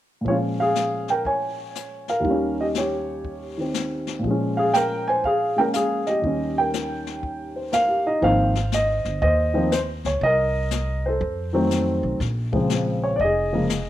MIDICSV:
0, 0, Header, 1, 4, 480
1, 0, Start_track
1, 0, Tempo, 497925
1, 251, Time_signature, 4, 2, 24, 8
1, 13395, End_track
2, 0, Start_track
2, 0, Title_t, "Grand piano"
2, 0, Program_c, 0, 0
2, 202, Note_on_c, 0, 46, 39
2, 238, Note_on_c, 0, 53, 36
2, 268, Note_on_c, 0, 56, 34
2, 270, Note_on_c, 0, 73, 72
2, 280, Note_on_c, 0, 65, 59
2, 306, Note_on_c, 0, 61, 39
2, 339, Note_off_c, 0, 73, 0
2, 348, Note_off_c, 0, 65, 0
2, 578, Note_on_c, 0, 77, 80
2, 597, Note_on_c, 0, 68, 56
2, 1030, Note_off_c, 0, 68, 0
2, 1062, Note_on_c, 0, 79, 72
2, 1068, Note_off_c, 0, 77, 0
2, 1068, Note_on_c, 0, 70, 59
2, 1207, Note_off_c, 0, 79, 0
2, 1211, Note_off_c, 0, 70, 0
2, 1218, Note_on_c, 0, 80, 76
2, 1223, Note_on_c, 0, 73, 60
2, 1974, Note_off_c, 0, 80, 0
2, 1976, Note_off_c, 0, 73, 0
2, 2019, Note_on_c, 0, 77, 69
2, 2021, Note_on_c, 0, 70, 52
2, 2119, Note_on_c, 0, 39, 41
2, 2148, Note_off_c, 0, 46, 0
2, 2150, Note_on_c, 0, 51, 45
2, 2166, Note_off_c, 0, 53, 0
2, 2181, Note_off_c, 0, 56, 0
2, 2184, Note_on_c, 0, 55, 42
2, 2200, Note_off_c, 0, 61, 0
2, 2221, Note_on_c, 0, 61, 50
2, 2462, Note_off_c, 0, 70, 0
2, 2509, Note_off_c, 0, 77, 0
2, 2512, Note_on_c, 0, 75, 69
2, 2518, Note_on_c, 0, 67, 47
2, 2560, Note_off_c, 0, 75, 0
2, 2567, Note_off_c, 0, 67, 0
2, 2677, Note_on_c, 0, 73, 61
2, 2685, Note_on_c, 0, 67, 54
2, 3431, Note_off_c, 0, 51, 0
2, 3446, Note_on_c, 0, 51, 37
2, 3476, Note_on_c, 0, 60, 35
2, 3587, Note_off_c, 0, 73, 0
2, 3591, Note_off_c, 0, 67, 0
2, 4039, Note_on_c, 0, 46, 42
2, 4067, Note_off_c, 0, 39, 0
2, 4077, Note_on_c, 0, 53, 41
2, 4091, Note_off_c, 0, 51, 0
2, 4100, Note_off_c, 0, 55, 0
2, 4106, Note_off_c, 0, 60, 0
2, 4116, Note_on_c, 0, 56, 40
2, 4118, Note_off_c, 0, 61, 0
2, 4151, Note_on_c, 0, 61, 50
2, 4406, Note_on_c, 0, 77, 74
2, 4424, Note_on_c, 0, 68, 61
2, 4566, Note_on_c, 0, 79, 95
2, 4570, Note_off_c, 0, 68, 0
2, 4576, Note_off_c, 0, 77, 0
2, 4587, Note_on_c, 0, 70, 66
2, 4876, Note_off_c, 0, 70, 0
2, 4894, Note_on_c, 0, 80, 87
2, 4897, Note_off_c, 0, 79, 0
2, 4911, Note_on_c, 0, 72, 68
2, 5044, Note_off_c, 0, 80, 0
2, 5053, Note_off_c, 0, 72, 0
2, 5064, Note_on_c, 0, 77, 84
2, 5079, Note_on_c, 0, 68, 60
2, 5348, Note_off_c, 0, 56, 0
2, 5362, Note_off_c, 0, 68, 0
2, 5363, Note_on_c, 0, 56, 36
2, 5376, Note_off_c, 0, 61, 0
2, 5378, Note_on_c, 0, 58, 33
2, 5380, Note_on_c, 0, 79, 80
2, 5385, Note_off_c, 0, 77, 0
2, 5391, Note_on_c, 0, 61, 40
2, 5398, Note_on_c, 0, 70, 66
2, 5428, Note_off_c, 0, 79, 0
2, 5446, Note_off_c, 0, 70, 0
2, 5532, Note_on_c, 0, 77, 78
2, 5552, Note_on_c, 0, 68, 66
2, 5839, Note_off_c, 0, 68, 0
2, 5851, Note_on_c, 0, 75, 71
2, 5860, Note_off_c, 0, 77, 0
2, 5868, Note_on_c, 0, 67, 51
2, 5987, Note_off_c, 0, 46, 0
2, 5988, Note_on_c, 0, 39, 39
2, 6006, Note_off_c, 0, 53, 0
2, 6010, Note_off_c, 0, 56, 0
2, 6011, Note_on_c, 0, 51, 35
2, 6018, Note_off_c, 0, 58, 0
2, 6023, Note_on_c, 0, 55, 35
2, 6024, Note_off_c, 0, 61, 0
2, 6039, Note_on_c, 0, 61, 43
2, 6307, Note_off_c, 0, 67, 0
2, 6344, Note_on_c, 0, 79, 83
2, 6346, Note_off_c, 0, 75, 0
2, 6360, Note_on_c, 0, 70, 50
2, 7287, Note_on_c, 0, 72, 35
2, 7429, Note_off_c, 0, 70, 0
2, 7444, Note_on_c, 0, 70, 41
2, 7457, Note_on_c, 0, 77, 97
2, 7538, Note_off_c, 0, 72, 0
2, 7601, Note_on_c, 0, 67, 42
2, 7739, Note_off_c, 0, 79, 0
2, 7744, Note_off_c, 0, 70, 0
2, 7774, Note_on_c, 0, 63, 43
2, 7777, Note_on_c, 0, 75, 72
2, 7782, Note_off_c, 0, 77, 0
2, 7854, Note_off_c, 0, 67, 0
2, 7901, Note_off_c, 0, 51, 0
2, 7916, Note_on_c, 0, 51, 58
2, 7921, Note_off_c, 0, 39, 0
2, 7926, Note_on_c, 0, 58, 49
2, 7927, Note_on_c, 0, 53, 44
2, 7931, Note_on_c, 0, 60, 60
2, 7939, Note_off_c, 0, 55, 0
2, 7942, Note_off_c, 0, 75, 0
2, 7942, Note_on_c, 0, 77, 91
2, 7947, Note_off_c, 0, 61, 0
2, 7948, Note_on_c, 0, 72, 63
2, 8021, Note_off_c, 0, 63, 0
2, 8210, Note_off_c, 0, 51, 0
2, 8216, Note_off_c, 0, 53, 0
2, 8216, Note_off_c, 0, 58, 0
2, 8218, Note_off_c, 0, 60, 0
2, 8428, Note_on_c, 0, 75, 81
2, 8432, Note_off_c, 0, 77, 0
2, 8862, Note_off_c, 0, 72, 0
2, 8868, Note_off_c, 0, 75, 0
2, 8887, Note_on_c, 0, 75, 87
2, 8902, Note_on_c, 0, 72, 59
2, 9192, Note_on_c, 0, 51, 49
2, 9198, Note_on_c, 0, 53, 52
2, 9202, Note_on_c, 0, 58, 46
2, 9202, Note_on_c, 0, 60, 60
2, 9348, Note_off_c, 0, 51, 0
2, 9351, Note_off_c, 0, 53, 0
2, 9353, Note_off_c, 0, 58, 0
2, 9353, Note_off_c, 0, 60, 0
2, 9356, Note_off_c, 0, 72, 0
2, 9370, Note_on_c, 0, 72, 81
2, 9384, Note_off_c, 0, 75, 0
2, 9442, Note_off_c, 0, 72, 0
2, 9699, Note_on_c, 0, 73, 61
2, 9846, Note_off_c, 0, 73, 0
2, 9865, Note_on_c, 0, 75, 95
2, 9884, Note_on_c, 0, 70, 61
2, 10660, Note_on_c, 0, 72, 63
2, 10679, Note_off_c, 0, 75, 0
2, 10685, Note_on_c, 0, 69, 50
2, 10789, Note_off_c, 0, 70, 0
2, 11115, Note_on_c, 0, 51, 55
2, 11121, Note_on_c, 0, 54, 55
2, 11126, Note_on_c, 0, 57, 56
2, 11130, Note_on_c, 0, 60, 65
2, 11574, Note_off_c, 0, 72, 0
2, 11587, Note_off_c, 0, 69, 0
2, 11731, Note_off_c, 0, 51, 0
2, 11734, Note_off_c, 0, 54, 0
2, 11736, Note_off_c, 0, 57, 0
2, 11738, Note_off_c, 0, 60, 0
2, 12074, Note_on_c, 0, 49, 51
2, 12079, Note_on_c, 0, 53, 50
2, 12081, Note_on_c, 0, 56, 49
2, 12092, Note_on_c, 0, 60, 54
2, 12566, Note_on_c, 0, 73, 74
2, 12674, Note_off_c, 0, 73, 0
2, 12685, Note_on_c, 0, 74, 61
2, 12689, Note_off_c, 0, 49, 0
2, 12692, Note_off_c, 0, 53, 0
2, 12693, Note_off_c, 0, 56, 0
2, 12698, Note_off_c, 0, 60, 0
2, 12729, Note_off_c, 0, 74, 0
2, 12730, Note_on_c, 0, 75, 85
2, 12765, Note_on_c, 0, 68, 57
2, 13040, Note_on_c, 0, 49, 51
2, 13043, Note_on_c, 0, 53, 43
2, 13049, Note_on_c, 0, 56, 41
2, 13054, Note_on_c, 0, 58, 46
2, 13188, Note_off_c, 0, 49, 0
2, 13190, Note_off_c, 0, 53, 0
2, 13193, Note_off_c, 0, 56, 0
2, 13195, Note_off_c, 0, 58, 0
2, 13395, Note_off_c, 0, 68, 0
2, 13395, Note_off_c, 0, 75, 0
2, 13395, End_track
3, 0, Start_track
3, 0, Title_t, "Upright bass"
3, 0, Program_c, 1, 32
3, 7927, Note_on_c, 1, 32, 66
3, 8689, Note_off_c, 1, 32, 0
3, 8722, Note_on_c, 1, 31, 60
3, 8877, Note_off_c, 1, 31, 0
3, 8888, Note_on_c, 1, 39, 76
3, 9648, Note_off_c, 1, 39, 0
3, 9686, Note_on_c, 1, 37, 55
3, 9839, Note_off_c, 1, 37, 0
3, 9843, Note_on_c, 1, 36, 75
3, 10768, Note_off_c, 1, 36, 0
3, 10803, Note_on_c, 1, 41, 76
3, 11565, Note_off_c, 1, 41, 0
3, 11596, Note_on_c, 1, 35, 59
3, 11753, Note_off_c, 1, 35, 0
3, 11762, Note_on_c, 1, 34, 79
3, 12685, Note_off_c, 1, 34, 0
3, 12720, Note_on_c, 1, 29, 67
3, 13395, Note_off_c, 1, 29, 0
3, 13395, End_track
4, 0, Start_track
4, 0, Title_t, "Drums"
4, 249, Note_on_c, 9, 36, 29
4, 251, Note_on_c, 9, 25, 38
4, 346, Note_off_c, 9, 36, 0
4, 726, Note_on_c, 9, 38, 44
4, 726, Note_on_c, 9, 44, 40
4, 823, Note_off_c, 9, 38, 0
4, 823, Note_off_c, 9, 44, 0
4, 1042, Note_on_c, 9, 38, 32
4, 1138, Note_off_c, 9, 38, 0
4, 1205, Note_off_c, 9, 25, 0
4, 1205, Note_on_c, 9, 25, 41
4, 1207, Note_on_c, 9, 36, 27
4, 1303, Note_off_c, 9, 36, 0
4, 1690, Note_on_c, 9, 38, 41
4, 1690, Note_on_c, 9, 44, 42
4, 1786, Note_off_c, 9, 38, 0
4, 1786, Note_off_c, 9, 44, 0
4, 2005, Note_on_c, 9, 38, 32
4, 2102, Note_off_c, 9, 38, 0
4, 2167, Note_on_c, 9, 36, 28
4, 2168, Note_off_c, 9, 25, 0
4, 2168, Note_on_c, 9, 25, 34
4, 2263, Note_off_c, 9, 36, 0
4, 2647, Note_on_c, 9, 38, 43
4, 2647, Note_on_c, 9, 44, 45
4, 2744, Note_off_c, 9, 38, 0
4, 2744, Note_off_c, 9, 44, 0
4, 3127, Note_off_c, 9, 25, 0
4, 3127, Note_on_c, 9, 25, 44
4, 3128, Note_on_c, 9, 36, 25
4, 3224, Note_off_c, 9, 36, 0
4, 3607, Note_on_c, 9, 38, 48
4, 3607, Note_on_c, 9, 44, 44
4, 3703, Note_off_c, 9, 38, 0
4, 3703, Note_off_c, 9, 44, 0
4, 3922, Note_on_c, 9, 38, 32
4, 4019, Note_off_c, 9, 38, 0
4, 4087, Note_off_c, 9, 25, 0
4, 4087, Note_on_c, 9, 25, 43
4, 4089, Note_on_c, 9, 36, 28
4, 4185, Note_off_c, 9, 36, 0
4, 4570, Note_on_c, 9, 38, 50
4, 4570, Note_on_c, 9, 44, 43
4, 4666, Note_off_c, 9, 38, 0
4, 4666, Note_off_c, 9, 44, 0
4, 5051, Note_off_c, 9, 25, 0
4, 5051, Note_on_c, 9, 25, 37
4, 5053, Note_on_c, 9, 36, 27
4, 5149, Note_off_c, 9, 36, 0
4, 5529, Note_on_c, 9, 38, 42
4, 5529, Note_on_c, 9, 44, 51
4, 5625, Note_off_c, 9, 38, 0
4, 5625, Note_off_c, 9, 44, 0
4, 5849, Note_on_c, 9, 38, 31
4, 5945, Note_off_c, 9, 38, 0
4, 6013, Note_off_c, 9, 25, 0
4, 6013, Note_on_c, 9, 25, 43
4, 6013, Note_on_c, 9, 36, 29
4, 6109, Note_off_c, 9, 36, 0
4, 6494, Note_on_c, 9, 38, 48
4, 6494, Note_on_c, 9, 44, 52
4, 6590, Note_off_c, 9, 38, 0
4, 6590, Note_off_c, 9, 44, 0
4, 6813, Note_on_c, 9, 38, 32
4, 6909, Note_off_c, 9, 38, 0
4, 6970, Note_on_c, 9, 36, 31
4, 6972, Note_off_c, 9, 25, 0
4, 6972, Note_on_c, 9, 25, 36
4, 7066, Note_off_c, 9, 36, 0
4, 7448, Note_on_c, 9, 38, 46
4, 7448, Note_on_c, 9, 44, 52
4, 7544, Note_off_c, 9, 38, 0
4, 7544, Note_off_c, 9, 44, 0
4, 7927, Note_on_c, 9, 36, 27
4, 7928, Note_off_c, 9, 25, 0
4, 7928, Note_on_c, 9, 25, 43
4, 8024, Note_off_c, 9, 36, 0
4, 8245, Note_on_c, 9, 38, 37
4, 8341, Note_off_c, 9, 38, 0
4, 8407, Note_on_c, 9, 38, 48
4, 8407, Note_on_c, 9, 44, 49
4, 8503, Note_off_c, 9, 38, 0
4, 8503, Note_off_c, 9, 44, 0
4, 8726, Note_on_c, 9, 38, 32
4, 8822, Note_off_c, 9, 38, 0
4, 8888, Note_on_c, 9, 36, 32
4, 8891, Note_off_c, 9, 25, 0
4, 8891, Note_on_c, 9, 25, 37
4, 8984, Note_off_c, 9, 36, 0
4, 9369, Note_on_c, 9, 38, 54
4, 9369, Note_on_c, 9, 44, 51
4, 9465, Note_off_c, 9, 38, 0
4, 9465, Note_off_c, 9, 44, 0
4, 9684, Note_on_c, 9, 38, 29
4, 9780, Note_off_c, 9, 38, 0
4, 9845, Note_off_c, 9, 25, 0
4, 9845, Note_on_c, 9, 25, 46
4, 9846, Note_on_c, 9, 36, 30
4, 9942, Note_off_c, 9, 36, 0
4, 10323, Note_on_c, 9, 38, 47
4, 10323, Note_on_c, 9, 44, 49
4, 10420, Note_off_c, 9, 38, 0
4, 10420, Note_off_c, 9, 44, 0
4, 10806, Note_off_c, 9, 25, 0
4, 10806, Note_on_c, 9, 25, 46
4, 10806, Note_on_c, 9, 36, 29
4, 10903, Note_off_c, 9, 36, 0
4, 11286, Note_on_c, 9, 38, 51
4, 11286, Note_on_c, 9, 44, 49
4, 11383, Note_off_c, 9, 38, 0
4, 11383, Note_off_c, 9, 44, 0
4, 11763, Note_on_c, 9, 36, 30
4, 11766, Note_off_c, 9, 25, 0
4, 11766, Note_on_c, 9, 25, 47
4, 11766, Note_on_c, 9, 38, 34
4, 11859, Note_off_c, 9, 36, 0
4, 11862, Note_off_c, 9, 38, 0
4, 12078, Note_on_c, 9, 36, 42
4, 12175, Note_off_c, 9, 36, 0
4, 12240, Note_on_c, 9, 38, 53
4, 12240, Note_on_c, 9, 44, 46
4, 12337, Note_off_c, 9, 38, 0
4, 12337, Note_off_c, 9, 44, 0
4, 12719, Note_off_c, 9, 25, 0
4, 12719, Note_on_c, 9, 25, 45
4, 12721, Note_on_c, 9, 36, 32
4, 12817, Note_off_c, 9, 36, 0
4, 13204, Note_on_c, 9, 38, 52
4, 13204, Note_on_c, 9, 44, 46
4, 13300, Note_off_c, 9, 38, 0
4, 13300, Note_off_c, 9, 44, 0
4, 13395, Note_off_c, 9, 25, 0
4, 13395, End_track
0, 0, End_of_file